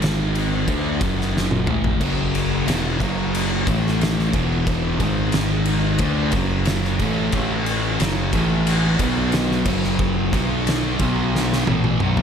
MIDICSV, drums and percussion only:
0, 0, Header, 1, 2, 480
1, 0, Start_track
1, 0, Tempo, 665927
1, 1450, Time_signature, 4, 2, 24, 8
1, 8808, End_track
2, 0, Start_track
2, 0, Title_t, "Drums"
2, 14, Note_on_c, 9, 51, 116
2, 28, Note_on_c, 9, 38, 127
2, 86, Note_off_c, 9, 51, 0
2, 101, Note_off_c, 9, 38, 0
2, 255, Note_on_c, 9, 51, 79
2, 327, Note_off_c, 9, 51, 0
2, 489, Note_on_c, 9, 36, 125
2, 490, Note_on_c, 9, 51, 124
2, 561, Note_off_c, 9, 36, 0
2, 562, Note_off_c, 9, 51, 0
2, 728, Note_on_c, 9, 36, 124
2, 730, Note_on_c, 9, 51, 86
2, 800, Note_off_c, 9, 36, 0
2, 802, Note_off_c, 9, 51, 0
2, 872, Note_on_c, 9, 38, 35
2, 944, Note_off_c, 9, 38, 0
2, 988, Note_on_c, 9, 38, 67
2, 1060, Note_off_c, 9, 38, 0
2, 1089, Note_on_c, 9, 48, 70
2, 1161, Note_off_c, 9, 48, 0
2, 1205, Note_on_c, 9, 45, 99
2, 1277, Note_off_c, 9, 45, 0
2, 1329, Note_on_c, 9, 43, 105
2, 1401, Note_off_c, 9, 43, 0
2, 1448, Note_on_c, 9, 36, 111
2, 1449, Note_on_c, 9, 49, 105
2, 1520, Note_off_c, 9, 36, 0
2, 1521, Note_off_c, 9, 49, 0
2, 1692, Note_on_c, 9, 51, 78
2, 1765, Note_off_c, 9, 51, 0
2, 1930, Note_on_c, 9, 51, 123
2, 1945, Note_on_c, 9, 38, 127
2, 2002, Note_off_c, 9, 51, 0
2, 2017, Note_off_c, 9, 38, 0
2, 2165, Note_on_c, 9, 36, 104
2, 2171, Note_on_c, 9, 51, 81
2, 2237, Note_off_c, 9, 36, 0
2, 2243, Note_off_c, 9, 51, 0
2, 2412, Note_on_c, 9, 51, 125
2, 2484, Note_off_c, 9, 51, 0
2, 2646, Note_on_c, 9, 36, 119
2, 2652, Note_on_c, 9, 51, 90
2, 2718, Note_off_c, 9, 36, 0
2, 2724, Note_off_c, 9, 51, 0
2, 2788, Note_on_c, 9, 38, 34
2, 2860, Note_off_c, 9, 38, 0
2, 2892, Note_on_c, 9, 51, 104
2, 2907, Note_on_c, 9, 38, 106
2, 2964, Note_off_c, 9, 51, 0
2, 2979, Note_off_c, 9, 38, 0
2, 3023, Note_on_c, 9, 38, 36
2, 3095, Note_off_c, 9, 38, 0
2, 3125, Note_on_c, 9, 36, 113
2, 3127, Note_on_c, 9, 51, 70
2, 3197, Note_off_c, 9, 36, 0
2, 3199, Note_off_c, 9, 51, 0
2, 3365, Note_on_c, 9, 36, 109
2, 3368, Note_on_c, 9, 51, 109
2, 3437, Note_off_c, 9, 36, 0
2, 3440, Note_off_c, 9, 51, 0
2, 3604, Note_on_c, 9, 36, 97
2, 3604, Note_on_c, 9, 51, 78
2, 3676, Note_off_c, 9, 36, 0
2, 3676, Note_off_c, 9, 51, 0
2, 3835, Note_on_c, 9, 51, 105
2, 3850, Note_on_c, 9, 38, 127
2, 3907, Note_off_c, 9, 51, 0
2, 3922, Note_off_c, 9, 38, 0
2, 4076, Note_on_c, 9, 51, 75
2, 4148, Note_off_c, 9, 51, 0
2, 4313, Note_on_c, 9, 51, 116
2, 4321, Note_on_c, 9, 36, 109
2, 4385, Note_off_c, 9, 51, 0
2, 4393, Note_off_c, 9, 36, 0
2, 4553, Note_on_c, 9, 51, 82
2, 4561, Note_on_c, 9, 36, 121
2, 4625, Note_off_c, 9, 51, 0
2, 4633, Note_off_c, 9, 36, 0
2, 4796, Note_on_c, 9, 51, 109
2, 4810, Note_on_c, 9, 38, 113
2, 4868, Note_off_c, 9, 51, 0
2, 4882, Note_off_c, 9, 38, 0
2, 4934, Note_on_c, 9, 38, 29
2, 5006, Note_off_c, 9, 38, 0
2, 5041, Note_on_c, 9, 51, 78
2, 5043, Note_on_c, 9, 36, 105
2, 5113, Note_off_c, 9, 51, 0
2, 5115, Note_off_c, 9, 36, 0
2, 5278, Note_on_c, 9, 51, 112
2, 5284, Note_on_c, 9, 36, 114
2, 5350, Note_off_c, 9, 51, 0
2, 5356, Note_off_c, 9, 36, 0
2, 5523, Note_on_c, 9, 51, 80
2, 5595, Note_off_c, 9, 51, 0
2, 5765, Note_on_c, 9, 51, 120
2, 5779, Note_on_c, 9, 38, 124
2, 5837, Note_off_c, 9, 51, 0
2, 5851, Note_off_c, 9, 38, 0
2, 6004, Note_on_c, 9, 36, 113
2, 6005, Note_on_c, 9, 51, 90
2, 6076, Note_off_c, 9, 36, 0
2, 6077, Note_off_c, 9, 51, 0
2, 6247, Note_on_c, 9, 51, 121
2, 6320, Note_off_c, 9, 51, 0
2, 6482, Note_on_c, 9, 51, 94
2, 6483, Note_on_c, 9, 36, 110
2, 6555, Note_off_c, 9, 36, 0
2, 6555, Note_off_c, 9, 51, 0
2, 6717, Note_on_c, 9, 51, 96
2, 6732, Note_on_c, 9, 38, 105
2, 6790, Note_off_c, 9, 51, 0
2, 6804, Note_off_c, 9, 38, 0
2, 6858, Note_on_c, 9, 38, 33
2, 6930, Note_off_c, 9, 38, 0
2, 6959, Note_on_c, 9, 49, 111
2, 6961, Note_on_c, 9, 36, 116
2, 7031, Note_off_c, 9, 49, 0
2, 7033, Note_off_c, 9, 36, 0
2, 7092, Note_on_c, 9, 38, 38
2, 7164, Note_off_c, 9, 38, 0
2, 7203, Note_on_c, 9, 36, 115
2, 7275, Note_off_c, 9, 36, 0
2, 7446, Note_on_c, 9, 36, 105
2, 7452, Note_on_c, 9, 51, 84
2, 7518, Note_off_c, 9, 36, 0
2, 7524, Note_off_c, 9, 51, 0
2, 7690, Note_on_c, 9, 51, 123
2, 7704, Note_on_c, 9, 38, 127
2, 7762, Note_off_c, 9, 51, 0
2, 7776, Note_off_c, 9, 38, 0
2, 7923, Note_on_c, 9, 51, 72
2, 7927, Note_on_c, 9, 36, 117
2, 7995, Note_off_c, 9, 51, 0
2, 7999, Note_off_c, 9, 36, 0
2, 8186, Note_on_c, 9, 38, 69
2, 8258, Note_off_c, 9, 38, 0
2, 8311, Note_on_c, 9, 38, 68
2, 8383, Note_off_c, 9, 38, 0
2, 8414, Note_on_c, 9, 48, 88
2, 8486, Note_off_c, 9, 48, 0
2, 8535, Note_on_c, 9, 48, 69
2, 8607, Note_off_c, 9, 48, 0
2, 8651, Note_on_c, 9, 47, 95
2, 8723, Note_off_c, 9, 47, 0
2, 8774, Note_on_c, 9, 45, 92
2, 8808, Note_off_c, 9, 45, 0
2, 8808, End_track
0, 0, End_of_file